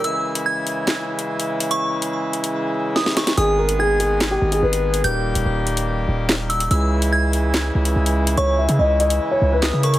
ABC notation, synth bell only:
X:1
M:4/4
L:1/8
Q:1/4=144
K:C#dor
V:1 name="Synth bell"
e'2 g'6 | c'6 d' c' | d'2 g'6 | =g'6- g' e' |
e'2 g'6 | c'6 d' c' |]